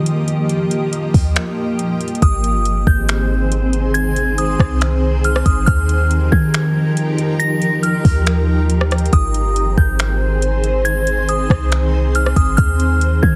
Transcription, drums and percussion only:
0.06 closed hi-hat medium
0.28 closed hi-hat medium
0.49 closed hi-hat medium
0.71 closed hi-hat medium
0.93 closed hi-hat medium
1.14 kick medium
1.14 open hi-hat medium
1.36 finger snap loud
1.36 closed hi-hat medium
1.79 closed hi-hat medium
2.01 closed hi-hat medium
2.08 closed hi-hat soft
2.15 closed hi-hat medium
2.22 kick loud
2.22 closed hi-hat medium
2.44 closed hi-hat medium
2.65 closed hi-hat medium
2.87 kick loud
3.09 finger snap loud
3.09 closed hi-hat medium
3.52 closed hi-hat medium
3.73 closed hi-hat medium
3.95 closed hi-hat medium
4.16 closed hi-hat medium
4.38 closed hi-hat medium
4.60 kick loud
4.60 cross-stick loud
4.81 finger snap loud
4.81 closed hi-hat medium
5.24 closed hi-hat medium
5.36 cross-stick loud
5.46 kick loud
5.46 closed hi-hat medium
5.67 kick loud
5.67 closed hi-hat medium
5.89 closed hi-hat medium
6.11 closed hi-hat medium
6.32 kick loud
6.54 finger snap loud
6.54 closed hi-hat medium
6.97 closed hi-hat medium
7.18 closed hi-hat medium
7.40 closed hi-hat medium
7.62 closed hi-hat medium
7.83 closed hi-hat medium
8.05 kick loud
8.05 open hi-hat medium
8.26 finger snap loud
8.26 closed hi-hat medium
8.70 closed hi-hat medium
8.81 cross-stick medium
8.91 cross-stick loud
8.91 closed hi-hat medium
8.98 closed hi-hat medium
9.06 closed hi-hat medium
9.13 kick loud
9.13 closed hi-hat medium
9.34 closed hi-hat medium
9.56 closed hi-hat medium
9.78 kick loud
9.99 finger snap loud
9.99 closed hi-hat medium
10.42 closed hi-hat medium
10.64 closed hi-hat medium
10.85 closed hi-hat medium
11.07 closed hi-hat medium
11.29 closed hi-hat medium
11.50 kick loud
11.50 cross-stick loud
11.72 finger snap loud
11.72 closed hi-hat medium
12.15 closed hi-hat medium
12.26 cross-stick medium
12.36 kick loud
12.36 closed hi-hat medium
12.58 kick loud
12.58 closed hi-hat medium
12.80 closed hi-hat medium
13.01 closed hi-hat medium
13.23 kick loud

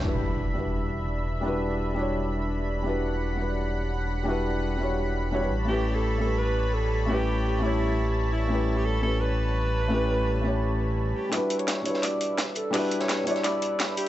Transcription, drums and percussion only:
11.32 snare soft
11.32 closed hi-hat medium
11.50 closed hi-hat medium
11.59 closed hi-hat soft
11.68 snare loud
11.68 snare soft
11.68 closed hi-hat medium
11.85 closed hi-hat medium
11.94 snare soft
12.03 snare soft
12.03 closed hi-hat medium
12.21 closed hi-hat medium
12.38 snare loud
12.38 snare soft
12.38 closed hi-hat medium
12.55 closed hi-hat medium
12.74 snare soft
12.74 closed hi-hat medium
12.74 open hi-hat medium
12.91 closed hi-hat medium
13.00 snare soft
13.00 closed hi-hat soft
13.09 snare medium
13.09 snare loud
13.09 closed hi-hat medium
13.27 closed hi-hat medium
13.36 snare soft
13.36 closed hi-hat soft
13.44 snare medium
13.44 closed hi-hat medium
13.62 closed hi-hat medium
13.79 snare medium
13.79 snare loud
13.79 closed hi-hat medium
13.97 closed hi-hat medium

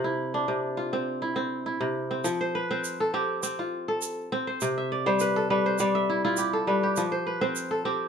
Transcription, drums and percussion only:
2.25 shaker medium
2.84 shaker medium
3.43 shaker medium
4.02 shaker medium
4.61 shaker medium
5.20 shaker medium
5.78 shaker medium
6.37 shaker medium
6.96 shaker medium
7.56 shaker medium

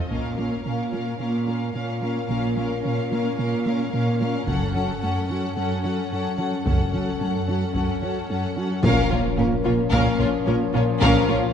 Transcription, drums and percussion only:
0.11 taiko soft
4.47 taiko medium
6.66 taiko medium
7.74 taiko medium
8.83 taiko loud
9.39 taiko low-mid medium
9.92 taiko medium
10.20 taiko low-mid medium
11.02 taiko loud

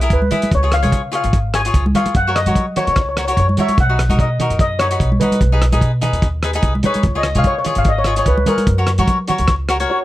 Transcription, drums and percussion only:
0.01 closed hi-hat medium
0.10 kick medium
0.10 closed hi-hat medium
0.22 high conga medium
0.31 closed hi-hat medium
0.31 high conga medium
0.31 low conga medium
0.42 closed hi-hat medium
0.42 high conga medium
0.51 kick medium
0.51 closed hi-hat soft
0.72 cross-stick medium
0.72 closed hi-hat medium
0.83 closed hi-hat medium
0.83 high conga medium
0.92 kick medium
0.92 closed hi-hat medium
1.13 closed hi-hat medium
1.24 closed hi-hat medium
1.33 kick loud
1.33 closed hi-hat medium
1.54 cross-stick medium
1.54 closed hi-hat medium
1.65 closed hi-hat medium
1.74 kick medium
1.74 closed hi-hat medium
1.86 high conga medium
1.95 closed hi-hat medium
1.95 high conga medium
1.95 low conga medium
2.06 closed hi-hat medium
2.06 high conga medium
2.15 kick medium
2.15 closed hi-hat soft
2.36 cross-stick medium
2.36 closed hi-hat medium
2.46 closed hi-hat medium
2.46 high conga medium
2.46 low conga medium
2.55 kick medium
2.55 closed hi-hat medium
2.76 closed hi-hat medium
2.76 low conga medium
2.87 closed hi-hat medium
2.96 kick medium
2.96 cross-stick medium
2.96 closed hi-hat medium
3.17 cross-stick medium
3.17 closed hi-hat medium
3.28 closed hi-hat medium
3.37 kick medium
3.37 closed hi-hat soft
3.49 high conga medium
3.57 closed hi-hat medium
3.57 high conga medium
3.57 low conga medium
3.68 closed hi-hat soft
3.68 high conga medium
3.78 kick medium
3.78 closed hi-hat soft
3.99 cross-stick medium
3.99 closed hi-hat medium
4.10 closed hi-hat medium
4.10 high conga medium
4.19 kick medium
4.19 closed hi-hat medium
4.40 closed hi-hat medium
4.40 low conga medium
4.50 closed hi-hat medium
4.59 kick loud
4.59 closed hi-hat medium
4.79 cross-stick medium
4.79 closed hi-hat medium
4.91 closed hi-hat medium
5.00 kick medium
5.00 closed hi-hat medium
5.12 high conga medium
5.21 closed hi-hat medium
5.21 high conga medium
5.21 low conga medium
5.32 closed hi-hat medium
5.32 high conga medium
5.41 kick medium
5.41 closed hi-hat medium
5.62 cross-stick medium
5.62 closed hi-hat medium
5.72 closed hi-hat medium
5.72 high conga medium
5.81 kick medium
5.81 closed hi-hat medium
6.02 closed hi-hat medium
6.02 low conga medium
6.13 closed hi-hat medium
6.22 kick loud
6.22 closed hi-hat medium
6.43 cross-stick medium
6.43 closed hi-hat medium
6.53 closed hi-hat medium
6.63 kick medium
6.63 closed hi-hat medium
6.75 high conga medium
6.83 closed hi-hat medium
6.83 high conga medium
6.83 low conga medium
6.94 closed hi-hat medium
6.94 high conga medium
7.03 kick loud
7.03 closed hi-hat soft
7.23 cross-stick medium
7.23 closed hi-hat medium
7.35 closed hi-hat soft
7.35 high conga medium
7.44 kick medium
7.44 closed hi-hat medium
7.64 closed hi-hat medium
7.64 low conga medium
7.75 closed hi-hat medium
7.84 kick medium
7.84 closed hi-hat medium
8.04 cross-stick medium
8.04 closed hi-hat medium
8.16 closed hi-hat medium
8.26 kick medium
8.26 closed hi-hat medium
8.38 high conga medium
8.46 closed hi-hat medium
8.46 high conga medium
8.46 low conga medium
8.58 closed hi-hat medium
8.58 high conga medium
8.67 kick medium
8.67 closed hi-hat medium
8.87 cross-stick medium
8.87 closed hi-hat medium
8.98 closed hi-hat medium
8.98 high conga medium
8.98 low conga medium
9.07 kick medium
9.07 closed hi-hat medium
9.27 closed hi-hat medium
9.27 low conga medium
9.38 closed hi-hat medium
9.48 kick loud
9.48 cross-stick medium
9.48 closed hi-hat medium
9.69 cross-stick medium
9.69 closed hi-hat medium
9.80 closed hi-hat medium

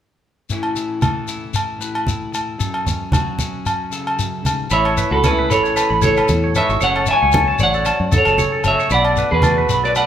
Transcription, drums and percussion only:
0.49 muted conga soft
0.49 shekere medium
0.63 low agogo soft
0.76 muted conga soft
0.76 shekere medium
1.02 high conga medium
1.02 low agogo medium
1.02 shekere medium
1.28 shekere medium
1.54 muted conga soft
1.54 low agogo medium
1.54 shekere medium
1.81 shekere medium
1.95 low agogo medium
2.07 high conga medium
2.07 shekere medium
2.33 muted conga soft
2.33 low agogo medium
2.33 shekere medium
2.60 muted conga soft
2.60 shekere medium
2.74 low agogo medium
2.87 muted conga soft
2.87 low conga medium
2.87 shekere medium
3.12 high conga medium
3.12 low conga medium
3.12 low agogo medium
3.12 shekere medium
3.39 high conga medium
3.39 shekere medium
3.66 muted conga soft
3.66 low agogo medium
3.66 shekere medium
3.92 shekere medium
4.07 low agogo medium
4.19 shekere medium
4.45 muted conga soft
4.45 high conga medium
4.45 low agogo medium
4.45 shekere medium
4.70 muted conga soft
4.70 shekere medium
4.85 low agogo medium
4.97 shekere medium
5.24 high conga medium
5.24 low agogo medium
5.24 shekere medium
5.51 muted conga soft
5.51 shekere medium
5.65 shekere soft
5.77 muted conga soft
5.77 low agogo medium
5.77 shekere medium
6.02 muted conga soft
6.02 high conga medium
6.02 shekere medium
6.17 low agogo medium
6.17 shekere soft
6.28 high conga medium
6.28 shekere medium
6.55 low agogo medium
6.55 shekere medium
6.70 shekere soft
6.81 muted conga soft
6.81 shekere medium
6.96 low agogo medium
7.06 shekere medium
7.32 high conga medium
7.32 low conga medium
7.32 low agogo medium
7.32 shekere medium
7.59 muted conga soft
7.59 shekere medium
7.74 shekere soft
7.85 muted conga soft
7.85 low agogo medium
7.85 shekere medium
8.12 muted conga soft
8.12 high conga medium
8.12 low conga medium
8.12 shekere medium
8.25 low agogo medium
8.25 shekere soft
8.38 high conga medium
8.38 shekere medium
8.64 low agogo medium
8.64 shekere medium
8.80 shekere soft
8.90 muted conga soft
8.90 shekere medium
9.05 low agogo medium
9.16 shekere medium
9.42 high conga medium
9.42 low agogo medium
9.42 shekere medium
9.69 muted conga soft
9.69 shekere medium
9.85 shekere soft
9.95 muted conga soft
9.95 low agogo medium
9.95 shekere medium

